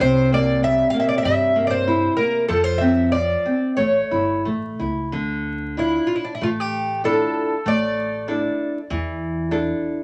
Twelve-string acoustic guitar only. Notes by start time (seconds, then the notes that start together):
0.01 C5
0.34 D5
0.64 E5
0.90 F5
1.00 E5
1.09 D5
1.18 E5
1.25 E5
1.67 C5 D5
2.17 A#4
2.48 A4
2.64 C5
2.78 E5
3.12 D5
3.77 C#5
5.79 E4
6.07 F4
6.16 E4
6.25 D4
6.35 E4
6.43 F4
6.60 G4
7.05 A4
7.68 D5